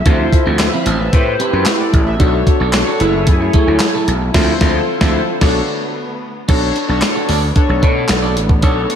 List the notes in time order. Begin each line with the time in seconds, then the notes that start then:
Already playing: E5
0.06 D2 D3 F3 C4 E4 F4 A4 C5, kick, closed hi-hat
0.19 muted clean electric guitar stroke
0.33 muted clean electric guitar stroke, kick, closed hi-hat
0.46 D2 F3 C4 F4
0.59 B4 E5, muted clean electric guitar stroke, snare, clap, closed hi-hat
0.72 F3 C4 E4 F5 B5
0.86 A1 F3 C4 F4 E5 A5, closed hi-hat
0.99 B4 E5, muted clean electric guitar stroke
1.13 A2 A3 E4 G4 B4 C5, muted clean electric guitar stroke, kick, closed hi-hat
1.26 muted clean electric guitar stroke
1.39 C4 G4 B4, closed hi-hat
1.53 F#2 C4 G4 B4
1.66 F#4 B4, muted clean electric guitar stroke, snare, clap, closed hi-hat
1.80 A4 D5, muted clean electric guitar stroke
1.94 A1, kick, closed hi-hat
2.07 B4 E5, muted clean electric guitar stroke
2.19 B1 B3 D4 F#4 A4 C5 C#5, kick, closed hi-hat
2.26 C#5
2.34 muted clean electric guitar stroke
2.47 muted clean electric guitar stroke, kick, closed hi-hat
2.60 B1 D4 A4 C#5
2.73 D4 F#4 A4 C#5, muted clean electric guitar stroke, snare, clap, closed hi-hat
2.87 D4 A4 C#5
3.00 F#1 F#3 A3 E4 G#4 A4 B4 G#5, closed hi-hat
3.07 C#5
3.14 muted clean electric guitar stroke
3.27 F#2, muted clean electric guitar stroke, kick, closed hi-hat
3.41 muted clean electric guitar stroke
3.53 A3 E4 G#4, kick, closed hi-hat
3.67 D2 A3 E4 G#4
3.79 muted clean electric guitar stroke, snare, clap, closed hi-hat
3.94 A3 E4 A4
4.08 B1, muted clean electric guitar stroke, closed hi-hat
4.21 muted clean electric guitar stroke
4.34 D2 D3 F3 C4 E4 F4 A4 C5, kick, snare, crash
4.61 D2 F3 C4 E4 F4 A4 C5, kick, snare
5.01 D2 F3 C4 E4 F4 A4 C5, kick, snare
5.41 B1 A3 B3 D4 F#4 A4 C#5, kick, snare, crash
6.48 B1 D3 A3 B3 D4 F#4 A4 C#5, kick, closed hi-hat, crash
6.62 muted clean electric guitar stroke
6.75 muted clean electric guitar stroke, closed hi-hat
6.88 B1 D4 F#4 A4 C#5
7.02 muted clean electric guitar stroke, snare, clap, closed hi-hat
7.15 D4 A4 C#5
7.29 D2 D4 A4 D5, open hi-hat
7.42 muted clean electric guitar stroke
7.56 D4 F#4 A4 C#5, muted clean electric guitar stroke, kick, closed hi-hat
7.69 B1, muted clean electric guitar stroke
7.82 B2 D4 A4 C#5, kick, closed hi-hat
7.96 D4 A4 C#5
8.08 B1, muted clean electric guitar stroke, snare, clap, closed hi-hat
8.22 D4 A4 D5
8.36 A1, muted clean electric guitar stroke, closed hi-hat
8.49 muted clean electric guitar stroke, kick
8.62 B1 D4 F#4 A4 C#5, kick, closed hi-hat
8.76 muted clean electric guitar stroke
8.89 muted clean electric guitar stroke, closed hi-hat